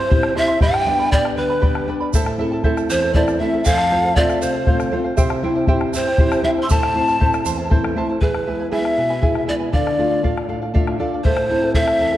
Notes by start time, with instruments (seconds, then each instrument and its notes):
Already playing: nylon-string guitar G2, pan flute C5, quena C5
0.10 nylon-string guitar G3 C4 E4, charango E4 G4 C5 E5 C6, bombo low
0.23 bombo rim
0.35 nylon-string guitar G3 C4 E4, charango E4 C5 E5 C6, pan flute E5, quena E5, bombo rim
0.48 charango E4 E5 C6, bombo rim
0.61 nylon-string guitar G2, charango G4 B4 D5 G5 B5, pan flute G5, quena G5, bombo low
0.74 bombo rim
0.86 nylon-string guitar G3 B3 D4, charango B4 D5 G5 B5
0.99 charango B4 D5 B5, bombo rim
1.11 nylon-string guitar G3 B3 D4, charango G4 B4 D5 G5 B5, pan flute D5, quena D5, bombo low
1.25 bombo rim
1.37 nylon-string guitar D3, pan flute B4, charango B4 D5 G5 B5, quena B4
1.50 charango B4 D5 B5, bombo rim
1.61 nylon-string guitar G3 B3 D4, charango G4 B4 D5 G5 B5, bombo low
1.75 bombo rim
1.88 nylon-string guitar G3 B3 D4, charango B4 D5 G5 B5, bombo rim
2.00 charango B4 D5 B5
2.13 nylon-string guitar A2, charango E4 A4 C5 E5 A5, bombo low, shaker
2.26 bombo rim
2.38 nylon-string guitar A3 C4 E4, charango E4 A4 E5 A5, bombo rim
2.52 charango E4 A4 A5
2.64 nylon-string guitar A3 C4 E4, charango E4 A4 C5 E5 A5, bombo low
2.77 bombo rim, shaker
2.89 nylon-string guitar E2, charango E4 A4 E5 A5, quena C5, pan flute C5, bombo rim, shaker
3.02 charango E4 A4 A5
3.14 nylon-string guitar A3 C4 E4, charango E4 A4 C5 E5 A5, pan flute D5, quena D5, bombo rim, bombo low
3.28 bombo rim, shaker
3.39 nylon-string guitar A3 C4 E4, charango E4 A4 E5 A5, pan flute E5, quena E5, bombo rim
3.54 charango E4 A4 A5, bombo rim
3.64 nylon-string guitar F2, charango A4 C5 F5, pan flute F5, quena G#5, bombo low, shaker
3.76 quena A5, bombo rim
3.91 nylon-string guitar A3 C4 F4, charango A4 C5 F5, bombo rim
4.04 charango C5 F5
4.16 nylon-string guitar A3 C4 F4, charango A4 C5 F5, pan flute D5, quena E5, bombo low
4.29 bombo rim, shaker
4.40 nylon-string guitar C3, charango A4 C5 F5, pan flute C5, quena F5, bombo rim, shaker
4.53 charango C5 F5
4.66 nylon-string guitar A3 C4 F4, charango A4 C5 F5, bombo low
4.80 bombo rim, shaker
4.91 nylon-string guitar A3 C4 F4, charango A4 C5 F5, bombo rim
5.04 charango C5 F5, bombo rim
5.17 nylon-string guitar C3, charango E4 G4 C5 E5 G5, bombo low, shaker
5.30 bombo rim
5.43 nylon-string guitar G3 C4 E4, charango E4 C5 E5 G5, bombo rim
5.55 charango E4 C5 G5
5.67 nylon-string guitar G3 C4 E4, charango E4 G4 C5 E5 G5, bombo low
5.81 bombo rim
5.93 nylon-string guitar G2, charango E4 C5 E5 G5, quena C5, pan flute C5, bombo rim, shaker
6.07 charango E4 C5 G5
6.18 nylon-string guitar G3 C4 E4, charango E4 G4 C5 E5 G5, bombo rim, bombo low
6.32 bombo rim, shaker
6.43 nylon-string guitar G3 C4 E4, charango E4 C5 E5 G5, pan flute E5, quena E5, bombo rim
6.57 charango E4 C5 G5, bombo rim
6.62 pan flute C6, quena E6
6.69 nylon-string guitar A2, charango E4 A4 C5 E5 A5, pan flute A5, quena A5, bombo low, shaker
6.83 bombo rim
6.94 nylon-string guitar A3 C4 E4, charango E4 C5 E5 A5
7.08 charango E4 C5 A5, bombo rim, shaker
7.20 nylon-string guitar A3 C4 E4, charango E4 A4 C5 E5 A5, bombo rim, bombo low
7.33 bombo rim, shaker
7.44 nylon-string guitar E2, charango E4 C5 E5 A5, bombo rim, shaker
7.58 charango E4 C5 A5
7.70 nylon-string guitar A3 C4 E4, charango E4 A4 C5 E5 A5, bombo rim, bombo low
7.84 bombo rim
7.96 nylon-string guitar A3 C4 E4, charango E4 C5 E5 A5, bombo rim
8.09 charango E4 C5 A5
8.21 nylon-string guitar E2, charango E4 G#4 B4 E5 G#5, pan flute B4, bombo rim, bombo low
8.34 bombo rim
8.46 nylon-string guitar G#3 B3 E4, charango E4 B4 E5 G#5
8.59 charango E4 B4 G#5
8.71 nylon-string guitar G#3 B3 E4, charango E4 G#4 B4 E5 G#5, pan flute E5, bombo rim
8.85 bombo rim
8.97 nylon-string guitar B2, charango E4 B4 E5 G#5, bombo rim
9.10 charango E4 B4 G#5, bombo rim
9.21 nylon-string guitar G#3 B3 E4, charango E4 G#4 B4 E5 G#5, bombo low
9.35 bombo rim
9.46 nylon-string guitar G#3 B3 E4, charango E4 B4 E5 G#5, pan flute D5, bombo rim
9.60 charango E4 B4 G#5
9.72 nylon-string guitar D3, charango A4 D5 F5, pan flute D5, bombo rim, bombo low
9.87 bombo rim
9.98 nylon-string guitar A3 D4 F4, charango A4 D5 F5
10.10 charango D5 F5
10.23 nylon-string guitar A3 D4 F4, charango A4 D5 F5, bombo rim, bombo low
10.38 bombo rim
10.49 nylon-string guitar A2, charango A4 D5 F5, bombo rim
10.61 charango D5 F5, bombo rim
10.74 nylon-string guitar A3 D4 F4 E5, charango A4 D5 F5, bombo low
10.87 bombo rim
10.99 nylon-string guitar A3 D4 F4 D5, charango A4 D5 F5, bombo rim
11.13 charango D5 F5
11.24 nylon-string guitar A2, charango E4 A4 C5 E5 A5, pan flute C5, bombo rim, bombo low
11.37 bombo rim
11.49 nylon-string guitar A3 C4 E4, charango E4 A4 E5 A5
11.62 charango E4 A4 A5
11.74 nylon-string guitar A3 C4 E4, charango E4 A4 C5 E5 A5, pan flute E5, bombo rim, bombo low
11.88 bombo rim
12.00 nylon-string guitar E2, charango E4 A4 E5 A5, bombo rim
12.13 charango E4 A4 A5, bombo rim